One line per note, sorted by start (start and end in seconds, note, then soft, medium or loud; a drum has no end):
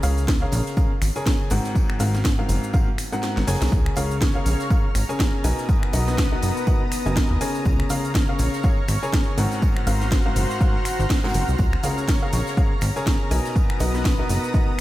0.03 0.46 C#2 medium
0.03 0.23 C#3 medium
0.03 0.23 C#4 medium
0.03 0.23 G#4 medium
0.03 0.23 A#4 medium
0.03 0.23 F5 medium
0.03 open hi-hat loud
0.03 tambourine medium
0.03 cabasa medium
0.17 tambourine medium
0.17 cabasa soft
0.28 kick loud
0.28 snare loud
0.28 tambourine medium
0.28 tambourine soft
0.28 cabasa soft
0.42 0.75 C#3 medium
0.42 0.75 C#4 medium
0.42 0.75 G#4 medium
0.42 0.75 A#4 medium
0.42 0.75 F5 medium
0.52 0.62 A#1 loud
0.52 open hi-hat medium
0.52 tambourine medium
0.52 cabasa medium
0.67 snare soft
0.67 tambourine soft
0.67 cabasa soft
0.77 0.90 C#3 medium
0.77 0.90 C#4 medium
0.77 0.90 G#4 medium
0.77 0.90 A#4 medium
0.77 0.90 F5 medium
0.77 kick loud
0.77 tambourine medium
0.77 tambourine soft
0.77 cabasa soft
1.02 1.11 G#1 loud
1.02 finger snap medium
1.02 open hi-hat loud
1.02 tambourine medium
1.02 cabasa medium
1.16 1.48 C#3 medium
1.16 1.48 C#4 medium
1.16 1.48 G#4 medium
1.16 1.48 A#4 medium
1.16 1.48 G#5 medium
1.16 tambourine medium
1.16 cabasa soft
1.26 kick loud
1.26 snare loud
1.26 tambourine medium
1.26 cabasa soft
1.50 1.60 G#1 medium
1.50 1.97 G#2 medium
1.50 1.97 C4 medium
1.50 1.97 F#4 medium
1.50 1.97 A#4 medium
1.50 1.97 F#5 loud
1.50 open hi-hat medium
1.50 tambourine medium
1.50 cabasa medium
1.65 snare soft
1.65 tambourine soft
1.65 cabasa soft
1.75 kick loud
1.75 tambourine medium
1.75 tambourine soft
1.75 cabasa soft
1.90 finger snap medium
1.99 2.43 G#1 medium
1.99 2.19 G#2 medium
1.99 2.19 C4 medium
1.99 2.19 F#4 medium
1.99 2.19 A#4 medium
1.99 2.19 F5 medium
1.99 open hi-hat loud
1.99 tambourine medium
1.99 cabasa medium
2.14 snare soft
2.14 tambourine medium
2.14 cabasa soft
2.24 kick loud
2.24 snare loud
2.24 tambourine medium
2.24 cabasa soft
2.39 2.71 G#2 medium
2.39 2.71 C4 medium
2.39 2.71 F#4 medium
2.39 2.71 A#4 medium
2.39 2.71 F5 medium
2.49 2.58 F#1 loud
2.49 open hi-hat medium
2.49 tambourine medium
2.49 cabasa medium
2.63 tambourine medium
2.63 cabasa soft
2.73 2.87 G#2 medium
2.73 2.87 C4 medium
2.73 2.87 F#4 medium
2.73 2.87 A#4 medium
2.73 2.87 F5 medium
2.73 kick loud
2.73 tambourine soft
2.73 tambourine medium
2.73 high conga medium
2.73 cabasa soft
2.98 finger snap medium
2.98 open hi-hat loud
2.98 tambourine medium
2.98 cabasa medium
3.12 3.45 G#2 medium
3.12 3.45 C4 medium
3.12 3.45 F#4 medium
3.12 3.45 A#4 medium
3.12 3.45 F#5 medium
3.12 tambourine medium
3.12 cabasa soft
3.22 snare medium
3.22 snare loud
3.22 tambourine soft
3.22 tambourine medium
3.22 cabasa soft
3.37 3.44 G#1 medium
3.37 snare medium
3.47 3.57 F#1 loud
3.47 3.94 C#3 loud
3.47 3.94 C#4 medium
3.47 3.94 G#4 medium
3.47 3.94 A#4 medium
3.47 3.94 G#5 loud
3.47 snare medium
3.47 open hi-hat medium
3.47 tambourine medium
3.47 cabasa medium
3.55 snare loud
3.55 tambourine medium
3.61 3.68 C2 loud
3.61 snare loud
3.61 snare medium
3.61 tambourine medium
3.61 cabasa soft
3.66 snare medium
3.66 tambourine medium
3.72 3.89 C#2 loud
3.72 5.42 C#5 medium
3.72 9.34 A#5 medium
3.72 5.42 F6 medium
3.72 kick loud
3.72 tambourine medium
3.72 tambourine soft
3.72 cabasa soft
3.86 finger snap medium
3.96 4.40 C#2 medium
3.96 4.16 C#3 medium
3.96 4.16 C#4 medium
3.96 4.16 G#4 medium
3.96 4.16 A#4 medium
3.96 4.16 F5 loud
3.96 open hi-hat loud
3.96 tambourine medium
3.96 cabasa medium
3.97 tambourine medium
4.11 tambourine medium
4.11 cabasa soft
4.21 kick loud
4.21 snare loud
4.21 tambourine medium
4.21 tambourine soft
4.21 cabasa soft
4.35 4.68 C#3 medium
4.35 4.68 C#4 medium
4.35 4.68 G#4 medium
4.35 4.68 A#4 medium
4.35 4.68 F5 medium
4.46 4.55 A#1 loud
4.46 open hi-hat medium
4.46 tambourine medium
4.46 cabasa medium
4.60 snare medium
4.60 tambourine medium
4.60 cabasa soft
4.70 4.84 C#3 medium
4.70 4.84 C#4 medium
4.70 4.84 G#4 medium
4.70 4.84 A#4 medium
4.70 4.84 F5 medium
4.70 kick loud
4.70 tambourine loud
4.70 cabasa soft
4.95 5.04 G#1 loud
4.95 finger snap medium
4.95 open hi-hat loud
4.95 tambourine medium
4.95 cabasa medium
5.09 5.42 C#3 medium
5.09 5.42 C#4 medium
5.09 5.42 G#4 medium
5.09 5.42 A#4 medium
5.09 5.42 G#5 medium
5.09 tambourine medium
5.09 cabasa soft
5.20 kick loud
5.20 snare loud
5.20 tambourine medium
5.20 cabasa soft
5.44 5.53 B1 medium
5.44 5.91 B2 medium
5.44 7.63 B3 medium
5.44 5.91 D#4 medium
5.44 5.91 A#4 medium
5.44 5.91 B4 medium
5.44 5.91 G#5 loud
5.44 7.63 D#6 medium
5.44 open hi-hat loud
5.44 tambourine loud
5.44 tambourine medium
5.44 cabasa medium
5.58 snare soft
5.58 tambourine soft
5.58 cabasa soft
5.69 kick loud
5.69 tambourine medium
5.69 tambourine soft
5.69 cabasa soft
5.83 finger snap medium
5.93 6.37 B1 medium
5.93 6.13 B2 medium
5.93 6.13 D#4 medium
5.93 6.13 A#4 medium
5.93 6.13 B4 medium
5.93 6.13 F#5 loud
5.93 open hi-hat loud
5.93 tambourine medium
5.93 cabasa medium
6.08 snare soft
6.08 tambourine medium
6.08 cabasa soft
6.18 kick loud
6.18 snare loud
6.18 tambourine medium
6.18 cabasa soft
6.32 6.65 B2 medium
6.32 6.65 D#4 medium
6.32 6.65 A#4 medium
6.32 6.65 B4 medium
6.32 6.65 F#5 medium
6.42 6.52 F#1 loud
6.42 open hi-hat medium
6.42 tambourine medium
6.42 tambourine loud
6.42 cabasa medium
6.57 tambourine medium
6.57 cabasa soft
6.67 6.80 B2 medium
6.67 6.80 D#4 medium
6.67 6.80 A#4 medium
6.67 6.80 B4 medium
6.67 6.80 F#5 loud
6.67 kick loud
6.67 tambourine soft
6.67 tambourine loud
6.67 cabasa soft
6.92 finger snap medium
6.92 open hi-hat loud
6.92 tambourine medium
6.92 cabasa medium
7.06 7.20 F#1 medium
7.06 7.38 B2 medium
7.06 7.38 D#4 medium
7.06 7.38 A#4 medium
7.06 7.38 B4 medium
7.06 7.38 G#5 loud
7.06 tambourine medium
7.06 cabasa soft
7.16 kick loud
7.16 snare loud
7.16 tambourine medium
7.16 cabasa soft
7.31 7.37 D#2 medium
7.41 7.88 C#3 medium
7.41 7.88 C#4 medium
7.41 7.88 G#4 medium
7.41 7.88 A#4 medium
7.41 7.88 G#5 loud
7.41 open hi-hat loud
7.41 tambourine medium
7.41 cabasa medium
7.55 tambourine medium
7.55 cabasa soft
7.65 7.83 C#2 loud
7.65 9.36 C#5 medium
7.65 13.27 F6 medium
7.65 kick loud
7.65 tambourine loud
7.65 tambourine soft
7.65 cabasa soft
7.80 finger snap medium
7.89 8.33 C#2 medium
7.89 8.09 C#3 medium
7.89 8.09 C#4 medium
7.89 8.09 G#4 medium
7.89 8.09 A#4 medium
7.89 8.09 F5 loud
7.89 open hi-hat loud
7.89 tambourine loud
7.89 tambourine medium
7.89 cabasa medium
8.04 tambourine soft
8.04 cabasa soft
8.15 kick loud
8.15 snare loud
8.15 tambourine medium
8.15 cabasa soft
8.29 8.61 C#3 medium
8.29 8.61 C#4 medium
8.29 8.61 G#4 medium
8.29 8.61 A#4 medium
8.29 8.61 F5 medium
8.39 8.48 A#1 loud
8.39 open hi-hat loud
8.39 tambourine medium
8.39 cabasa medium
8.53 snare medium
8.53 tambourine medium
8.53 cabasa soft
8.63 8.77 C#3 medium
8.63 8.77 C#4 medium
8.63 8.77 G#4 medium
8.63 8.77 A#4 medium
8.63 8.77 F5 loud
8.63 kick loud
8.63 tambourine soft
8.63 tambourine medium
8.63 cabasa soft
8.88 8.98 G#1 loud
8.88 finger snap medium
8.88 open hi-hat loud
8.88 tambourine medium
8.88 cabasa medium
9.03 9.35 C#3 medium
9.03 9.35 C#4 medium
9.03 9.35 G#4 medium
9.03 9.35 A#4 medium
9.03 9.35 G#5 medium
9.03 tambourine medium
9.03 cabasa soft
9.13 kick loud
9.13 snare loud
9.13 tambourine medium
9.13 cabasa soft
9.38 9.47 G#1 medium
9.38 9.84 G#2 medium
9.38 9.84 C4 medium
9.38 11.57 F#4 medium
9.38 9.84 F#4 medium
9.38 9.84 A#4 medium
9.38 11.57 C5 medium
9.38 9.84 F#5 loud
9.38 14.81 A#5 medium
9.38 open hi-hat loud
9.38 tambourine medium
9.38 cabasa medium
9.52 snare soft
9.52 tambourine medium
9.52 cabasa soft
9.62 kick loud
9.62 tambourine medium
9.62 tambourine soft
9.62 cabasa soft
9.77 finger snap medium
9.87 10.30 G#1 medium
9.87 10.06 G#2 medium
9.87 10.06 C4 medium
9.87 10.06 F#4 medium
9.87 10.06 A#4 medium
9.87 10.06 F5 medium
9.87 open hi-hat loud
9.87 tambourine medium
9.87 cabasa medium
10.01 snare soft
10.01 tambourine medium
10.01 cabasa soft
10.11 kick loud
10.11 snare loud
10.11 tambourine medium
10.11 cabasa soft
10.26 10.58 G#2 medium
10.26 10.58 C4 medium
10.26 10.58 F#4 medium
10.26 10.58 A#4 medium
10.26 10.58 F5 medium
10.36 10.45 F#1 loud
10.36 open hi-hat loud
10.36 tambourine loud
10.36 tambourine medium
10.36 cabasa medium
10.51 tambourine medium
10.51 cabasa soft
10.61 10.74 G#2 medium
10.61 10.74 C4 medium
10.61 10.74 F#4 medium
10.61 10.74 A#4 medium
10.61 10.74 F5 medium
10.61 kick loud
10.61 tambourine soft
10.61 tambourine medium
10.61 cabasa soft
10.85 finger snap medium
10.85 open hi-hat loud
10.85 tambourine loud
10.85 tambourine medium
10.85 cabasa medium
10.99 11.06 G#1 medium
10.99 tambourine medium
10.99 cabasa soft
11.09 kick loud
11.09 snare loud
11.09 tambourine medium
11.09 cabasa soft
11.17 snare loud
11.17 tambourine medium
11.24 11.33 G#2 medium
11.24 11.33 C4 medium
11.24 11.33 F#4 medium
11.24 11.33 A#4 medium
11.24 11.33 F#5 loud
11.24 snare medium
11.24 tambourine medium
11.29 snare medium
11.29 tambourine medium
11.34 11.44 F#1 loud
11.34 11.48 C4 medium
11.34 11.48 F#4 medium
11.34 11.48 A#4 medium
11.34 11.48 F#5 medium
11.34 open hi-hat loud
11.34 tambourine medium
11.34 cabasa medium
11.48 11.55 C2 medium
11.48 tambourine medium
11.48 cabasa soft
11.58 11.76 C#2 loud
11.58 13.29 C#5 medium
11.58 kick loud
11.58 tambourine medium
11.58 tambourine soft
11.58 cabasa soft
11.73 finger snap medium
11.83 12.27 C#2 loud
11.83 12.03 C#3 medium
11.83 12.03 C#4 medium
11.83 12.03 G#4 medium
11.83 12.03 A#4 medium
11.83 12.03 F5 loud
11.83 open hi-hat loud
11.83 tambourine medium
11.83 cabasa medium
11.98 tambourine medium
11.98 cabasa soft
12.08 kick loud
12.08 snare loud
12.08 tambourine soft
12.08 tambourine medium
12.08 cabasa soft
12.22 12.55 C#3 medium
12.22 12.55 C#4 medium
12.22 12.55 G#4 medium
12.22 12.55 A#4 medium
12.22 12.55 F5 medium
12.33 12.42 A#1 loud
12.33 open hi-hat medium
12.33 tambourine medium
12.33 cabasa medium
12.47 snare medium
12.47 tambourine medium
12.47 cabasa soft
12.57 12.71 C#3 medium
12.57 12.71 C#4 medium
12.57 12.71 G#4 medium
12.57 12.71 A#4 medium
12.57 12.71 F5 loud
12.57 kick loud
12.57 tambourine medium
12.57 tambourine soft
12.57 cabasa soft
12.81 12.91 G#1 medium
12.81 finger snap medium
12.81 open hi-hat loud
12.81 tambourine medium
12.81 cabasa medium
12.96 13.29 C#3 medium
12.96 13.29 C#4 medium
12.96 13.29 G#4 medium
12.96 13.29 A#4 medium
12.96 13.29 G#5 medium
12.96 tambourine medium
12.96 cabasa soft
13.07 kick loud
13.07 snare loud
13.07 tambourine medium
13.07 cabasa soft
13.31 13.40 B1 medium
13.31 13.78 B2 loud
13.31 14.81 B3 medium
13.31 13.78 D#4 medium
13.31 13.78 A#4 medium
13.31 13.78 B4 medium
13.31 13.78 G#5 loud
13.31 14.81 D#6 medium
13.31 open hi-hat loud
13.31 tambourine medium
13.31 tambourine loud
13.31 cabasa medium
13.45 snare soft
13.45 tambourine medium
13.45 cabasa soft
13.56 kick loud
13.56 tambourine medium
13.56 cabasa soft
13.70 finger snap medium
13.80 14.23 B1 loud
13.80 14.00 B2 medium
13.80 14.00 D#4 medium
13.80 14.00 A#4 medium
13.80 14.00 B4 medium
13.80 14.00 F#5 medium
13.80 open hi-hat loud
13.80 tambourine medium
13.80 cabasa medium
13.94 snare soft
13.94 tambourine medium
13.94 cabasa soft
14.05 kick loud
14.05 snare loud
14.05 tambourine medium
14.05 cabasa soft
14.19 14.52 B2 medium
14.19 14.52 D#4 medium
14.19 14.52 A#4 medium
14.19 14.52 B4 medium
14.19 14.52 F#5 medium
14.29 14.39 F#1 loud
14.29 open hi-hat medium
14.29 tambourine medium
14.29 cabasa medium
14.44 tambourine medium
14.44 cabasa soft
14.54 14.67 B2 medium
14.54 14.67 D#4 medium
14.54 14.67 A#4 medium
14.54 14.67 B4 medium
14.54 14.67 F#5 loud
14.54 kick loud
14.54 tambourine medium
14.54 tambourine soft
14.54 cabasa soft